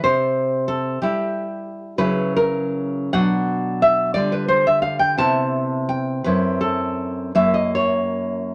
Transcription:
0.04 C3 C5
0.68 A4
1.02 G3 E4 G4
1.98 C#3 F#3 E4 B4
2.37 A#4
3.13 B2 F#3 D4 F#5
3.82 E5
4.14 D3 G3 F4 D5
4.32 B4
4.48 C5
4.67 E5
4.82 F5
4.99 G5
5.18 C3 B3 E4 A5
5.89 G5
6.24 F#2 C4 E4 B4
6.61 A4
7.35 F#2 A#3 E4 E5
7.54 D#5
7.75 C#5

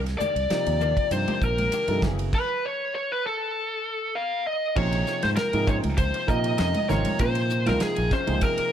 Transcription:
Already playing: C2
0.06 muted clean electric guitar stroke, snare, ride
0.18 D#3 A#3 D4 G4 D5, hi-hat pedal, high conga, low conga
0.36 C2, muted clean electric guitar stroke, ride
0.50 C3 F3 A#3 D#4 G4, snare, hi-hat pedal, ride
0.66 D#2, muted clean electric guitar stroke, ride
0.81 D#3 A#3 D4 G4, hi-hat pedal, low conga
0.97 muted clean electric guitar stroke, kick, ride
1.11 G2 C3 F3 A#3 D#4 G4 C5, muted clean electric guitar stroke, hi-hat pedal, ride
1.28 D#3 A#3 D4 G4, muted fingered electric bass stroke, ride, high conga
1.42 A#1 A#4, muted clean electric guitar stroke, kick, hi-hat pedal
1.58 ride, high conga
1.72 D#3 A#3 D4 G4, hi-hat pedal, ride
1.88 G2 C3 F3 A#3 D#4 A4, muted clean electric guitar stroke, ride
2.02 F#1 C#3 E3 F#3 A3 B3 C#4 E4 G#4, kick, snare, hi-hat pedal, low conga
2.19 muted clean electric guitar stroke, ride
2.33 B4, kick, crash
2.65 C#5
2.95 C#5
3.12 B4
3.27 A4
4.15 F5
4.47 D#5
4.75 A#1 C3 F3 A#3 C#4 D#4 G#4 C5 C#5, kick, crash
4.92 ride
5.07 muted clean electric guitar stroke, snare, hi-hat pedal
5.22 G#2 D#4 G#4 C5, snare, ride, high conga
5.36 A#4, muted clean electric guitar stroke, snare, hi-hat pedal, ride
5.53 G#2 C3 F3 A#3 D#4 G#4, muted clean electric guitar stroke, ride
5.67 C#4 D#4 G#4 C5 C#5, kick, hi-hat pedal, low conga
5.84 C#2, muted clean electric guitar stroke, ride, high conga
5.98 C5, kick, hi-hat pedal, ride
6.14 muted clean electric guitar stroke, ride
6.27 A#2 C3 F3 A#3 D#4 A#4 D#5, muted clean electric guitar stroke, kick, hi-hat pedal
6.44 muted clean electric guitar stroke, ride
6.58 F2 C#4 D#4 G#4 C5 D#5, snare, hi-hat pedal, ride
6.74 muted clean electric guitar stroke, ride, high conga
6.89 G#1 C3 F3 A#3 C#4 D#4 G#4 A#4 C5 C#5, snare, hi-hat pedal, high conga, low conga
7.05 muted fingered electric bass stroke, ride, high conga
7.19 A#2 C#4 D#4 G#4 C5, kick, hi-hat pedal, ride
7.35 ride
7.50 muted clean electric guitar stroke, hi-hat pedal
7.66 C#2 C3 F3 A#3 D#4 F4 G#4 A#4 C5, snare, ride, high conga
7.80 G#4, muted clean electric guitar stroke, snare, hi-hat pedal, ride
7.96 A#1, muted clean electric guitar stroke, ride
8.11 C#4 D#4 G#4 C5, kick, snare, hi-hat pedal
8.27 C#2 C3 F3 A#3 D#4 G#4, muted clean electric guitar stroke, ride, high conga
8.41 A#4, kick, hi-hat pedal, ride
8.58 muted clean electric guitar stroke, muted fingered electric bass stroke, ride

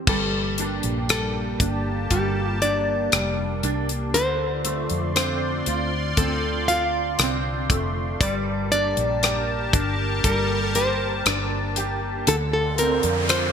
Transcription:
0.07 G1 G2 G3 A#3 G4 A4 A5, kick, crash
0.58 A#3 D4, closed hi-hat
0.83 A#1, closed hi-hat
1.09 G3 D4 A4, cross-stick, closed hi-hat
1.60 G1 A#3 D4, kick, closed hi-hat
2.10 G1 G3 G4 A4, kick, closed hi-hat
2.62 A#3 D4 D5, closed hi-hat
3.12 F1 G3 D4, cross-stick, closed hi-hat
3.63 C2 A#3 D4, closed hi-hat
3.89 closed hi-hat
4.14 D2 D3 F4 C5 D5 C6, closed hi-hat
4.65 A3 C4, closed hi-hat
4.90 F2, closed hi-hat
5.16 C4 D4 C5, cross-stick, closed hi-hat
5.66 D2 C4 F4, closed hi-hat
6.17 D2 C4 A4, kick, closed hi-hat
6.68 C4 F4 F5, closed hi-hat
7.19 C2 C4 D4, cross-stick, closed hi-hat
7.70 F1 A3 C4, kick, closed hi-hat
8.21 G1 G2 G3 G4 A#4 D5 A5, kick, closed hi-hat
8.72 A#3 D4 D5, closed hi-hat
8.97 A#1, closed hi-hat
9.23 D4 G4, cross-stick, closed hi-hat
9.73 G1 A#3 D4, kick, closed hi-hat
10.24 G1 G3 A#4, kick, closed hi-hat
10.63 A4
10.75 A#3 G4 C5, closed hi-hat
11.26 G1 D4, cross-stick, closed hi-hat
11.76 A#3 G4, closed hi-hat
12.27 D2 D3 F4 A4 D5 C6, closed hi-hat, noise sweep
12.53 A4
12.78 C4 A#4, closed hi-hat
13.03 F2, closed hi-hat
13.29 D4 F4 C5, cross-stick, closed hi-hat

